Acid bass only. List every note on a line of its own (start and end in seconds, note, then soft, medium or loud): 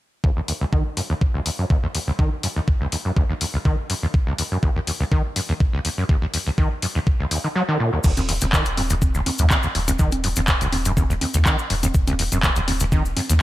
0.24 0.31 D#2 medium
0.37 0.41 D#2 loud
0.48 0.53 D#2 medium
0.61 0.65 C#2 loud
0.73 0.83 D#3 medium
0.97 1.01 F#2 medium
1.10 1.14 D#2 loud
1.34 1.41 C#2 medium
1.46 1.50 D#2 medium
1.59 1.65 F#2 medium
1.70 1.77 D#2 medium
1.83 1.87 D#2 medium
1.95 1.99 D#2 medium
2.08 2.11 C#2 loud
2.19 2.30 D#3 medium
2.43 2.48 F#2 medium
2.56 2.60 D#2 loud
2.81 2.87 C#2 medium
2.92 2.96 D#2 medium
3.05 3.11 F#2 medium
3.17 3.24 D#2 medium
3.29 3.33 D#2 loud
3.41 3.45 D#2 medium
3.54 3.58 C#2 medium
3.65 3.76 D#3 medium
3.90 3.94 F#2 medium
4.03 4.06 D#2 loud
4.27 4.33 C#2 loud
4.39 4.43 D#2 medium
4.51 4.58 F#2 medium
4.63 4.70 D#2 medium
4.76 4.80 D#2 medium
4.87 4.92 D#2 medium
5.00 5.04 C#2 loud
5.12 5.22 D#3 medium
5.36 5.40 F#2 medium
5.49 5.53 D#2 loud
5.73 5.80 C#2 medium
5.85 5.89 D#2 medium
5.98 6.04 F#2 medium
6.09 6.16 D#2 medium
6.22 6.26 D#2 loud
6.34 6.38 D#2 medium
6.46 6.50 C#2 loud
6.58 6.69 D#3 medium
6.82 6.87 F#2 medium
6.95 6.99 D#2 loud
7.20 7.26 C#2 loud
7.31 7.38 D#2 medium
7.44 7.48 D#3 medium
7.55 7.63 F#3 medium
7.68 7.78 D#3 medium
7.80 7.91 A#2 medium
7.93 7.99 D#2 medium
8.04 8.11 D#2 medium
8.17 8.21 D#2 loud
8.29 8.33 D#2 medium
8.42 8.45 C#2 loud
8.53 8.64 D#3 medium
8.77 8.82 F#2 medium
8.90 8.94 D#2 loud
9.15 9.21 C#2 loud
9.26 9.31 D#2 medium
9.39 9.46 F#2 medium
9.51 9.58 D#2 medium
9.64 9.67 D#2 medium
9.75 9.79 D#2 medium
9.88 9.92 C#2 loud
9.99 10.10 D#3 medium
10.24 10.28 F#2 medium
10.37 10.41 D#2 loud
10.61 10.67 C#2 loud
10.73 10.77 D#2 medium
10.86 10.92 F#2 medium
10.97 11.04 D#2 medium
11.10 11.14 D#2 loud
11.21 11.26 D#2 medium
11.34 11.38 C#2 loud
11.46 11.56 D#3 medium
11.70 11.74 F#2 medium
11.83 11.87 D#2 loud
12.07 12.14 C#2 loud
12.19 12.23 D#2 medium
12.32 12.38 F#2 medium
12.43 12.51 D#2 medium
12.56 12.60 D#2 medium
12.68 12.72 D#2 medium
12.81 12.84 C#2 loud
12.92 13.03 D#3 medium
13.17 13.21 F#2 medium
13.30 13.33 D#2 loud